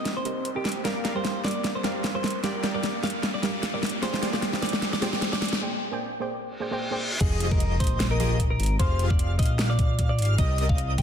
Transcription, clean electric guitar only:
0.00 0.11 D#5 medium
0.17 0.49 C5 medium
0.56 0.80 G4 medium
0.85 1.10 A#4 loud
1.16 1.40 C5 loud
1.45 1.70 D5 medium
1.75 2.08 C5 medium
2.15 2.39 C5 medium
2.44 2.69 D5 loud
2.75 2.99 D5 medium
3.03 3.29 F5 medium
3.34 3.66 D5 medium
3.74 3.98 D5 medium
4.03 4.28 C5 loud
4.33 4.58 D5 medium
4.62 4.88 D5 medium
4.93 5.25 D5 medium
5.33 5.57 D5 medium
7.21 7.46 G#4 loud
7.51 7.76 A#4 loud
7.80 8.05 C5 medium
8.11 8.43 A#4 medium
8.50 8.75 A#4 medium
8.79 9.05 C5 loud
9.10 9.34 D5 loud
9.39 9.64 D#5 medium
9.70 10.02 D5 loud
10.09 10.34 D5 loud
10.38 10.64 D#5 loud
10.69 10.93 F5 medium
10.98 11.02 G5 medium

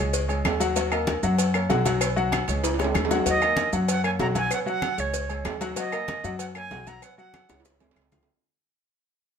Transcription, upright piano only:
0.00 0.23 G#3 medium
0.00 0.23 G#4 medium
0.00 0.24 C#5 medium
0.28 0.54 G#3 medium
0.28 0.55 G#4 medium
0.28 0.55 C#5 medium
0.60 0.73 F#3 medium
0.60 0.73 F#4 loud
0.60 0.73 F#5 medium
0.76 0.89 F#3 medium
0.76 0.89 F#4 medium
0.76 0.89 F#5 medium
0.92 1.17 A#3 medium
0.92 1.17 A#4 medium
0.92 1.18 D#5 medium
1.23 1.49 F#3 medium
1.23 1.49 F#4 medium
1.23 1.49 F#5 medium
1.54 1.67 A#3 medium
1.54 1.67 A#4 medium
1.54 1.67 C#5 medium
1.69 1.82 F#3 medium
1.69 1.82 F#4 medium
1.69 1.83 F#5 medium
1.85 1.98 F#3 medium
1.85 1.98 F#4 medium
1.85 1.99 F#5 medium
2.01 2.14 B3 medium
2.01 2.14 B4 medium
2.01 2.14 C#5 medium
2.16 2.42 F#3 medium
2.16 2.42 F#4 loud
2.16 2.42 F#5 loud
2.48 2.74 G#3 medium
2.48 2.74 G#4 medium
2.48 2.74 C#5 medium
2.79 3.05 G#3 medium
2.79 3.05 G#4 medium
2.79 3.05 C#5 medium
3.10 3.23 F#3 medium
3.10 3.23 F#4 medium
3.10 3.24 F#5 loud
3.26 3.39 F#3 medium
3.26 3.39 F#4 medium
3.26 3.39 F#5 medium
3.41 3.67 A#3 medium
3.41 3.67 A#4 medium
3.41 3.67 D#5 medium
3.73 3.99 F#3 medium
3.73 3.99 F#4 medium
3.73 3.99 F#5 medium
4.04 4.17 A#3 medium
4.04 4.17 A#4 medium
4.04 4.17 C#5 medium
4.19 4.33 F#3 medium
4.19 4.33 F#4 medium
4.19 4.33 F#5 medium
4.35 4.48 F#3 loud
4.35 4.48 F#4 medium
4.35 4.49 F#5 medium
4.50 4.64 B3 medium
4.50 4.64 B4 medium
4.50 4.64 C#5 medium
4.66 4.92 F#3 loud
4.66 4.92 F#4 loud
4.66 4.93 F#5 medium
4.97 5.23 G#3 medium
4.97 5.24 G#4 medium
4.97 5.24 C#5 medium
5.29 5.55 G#3 medium
5.29 5.55 G#4 medium
5.29 5.56 C#5 medium
5.61 5.74 F#3 loud
5.61 5.74 F#4 loud
5.61 5.74 F#5 medium
5.76 5.89 F#3 medium
5.76 5.90 F#4 medium
5.76 5.90 F#5 medium
5.92 6.18 A#3 medium
5.92 6.18 A#4 medium
5.92 6.18 D#5 medium
6.24 6.50 F#3 medium
6.24 6.50 F#4 medium
6.24 6.50 F#5 medium
6.55 6.68 A#3 medium
6.55 6.68 A#4 medium
6.55 6.69 C#5 medium
6.71 6.84 F#3 medium
6.71 6.84 F#4 medium
6.71 6.84 F#5 medium
6.87 7.00 F#3 loud
6.87 7.00 F#4 medium
6.87 7.00 F#5 loud
7.02 7.15 B3 medium
7.02 7.15 B4 medium
7.02 7.16 C#5 medium
7.18 7.43 F#3 loud
7.18 7.44 F#4 medium
7.18 7.44 F#5 loud
7.48 7.74 G#3 medium
7.48 7.75 G#4 medium
7.48 7.75 C#5 medium
7.80 8.06 G#3 medium
7.80 8.06 G#4 medium
7.80 8.06 C#5 medium
8.12 8.24 F3 medium
8.12 8.25 F4 medium
8.12 8.25 F5 medium

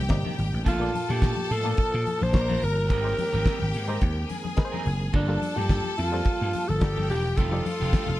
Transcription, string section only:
0.00 0.62 G4 medium
0.00 0.62 G5 loud
0.66 2.30 A4 medium
0.66 2.30 A5 loud
2.35 2.89 A#4 medium
2.35 2.89 A#5 medium
2.90 4.27 G4 medium
2.90 4.27 G5 medium
4.30 5.12 G#4 medium
4.30 5.12 G#5 medium
5.13 6.78 A4 medium
5.13 6.78 A5 loud
6.82 7.36 G4 medium
6.82 7.37 G5 medium
7.38 8.20 F4 medium
7.38 8.20 F5 medium

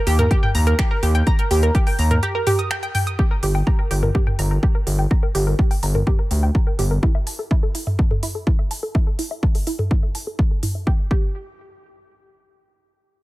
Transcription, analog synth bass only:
0.07 0.26 D#2 loud
0.55 0.74 D#2 loud
1.03 1.22 D#2 loud
1.51 1.70 D#2 loud
1.99 2.18 D#2 medium
3.43 3.62 G1 loud
3.91 4.10 G1 loud
4.39 4.58 G1 loud
4.87 5.06 G1 loud
5.35 5.54 G1 medium
5.83 6.02 G1 medium
6.31 6.50 D2 medium
6.79 6.98 G1 loud

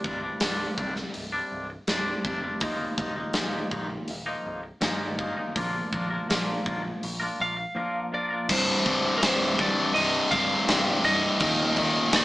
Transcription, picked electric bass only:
0.05 0.29 C1 medium
0.41 0.66 C1 medium
0.78 1.03 C2 medium
1.15 1.40 C1 medium
1.52 1.77 C1 medium
1.88 2.13 C1 medium
2.25 2.61 F1 medium
2.61 2.86 D#1 medium
2.98 3.23 D#1 medium
3.36 3.60 D#1 medium
3.71 3.96 A#1 medium
4.10 4.34 D#1 medium
4.46 4.71 C1 medium
4.82 5.32 G1 medium
5.56 5.80 A#1 medium
5.93 6.17 A#1 medium
6.30 6.54 A#1 medium
6.66 6.91 A#1 medium
7.04 7.28 A#1 medium
7.40 7.64 A#1 medium
8.50 8.72 C1 medium
8.86 9.08 C1 medium
9.23 9.67 C1 loud
9.96 10.18 C1 loud
10.32 10.54 C1 medium
10.69 10.91 G1 medium
11.04 11.26 C1 medium
11.41 11.63 D#1 medium
11.77 11.99 D#1 loud
12.13 12.25 D#1 medium

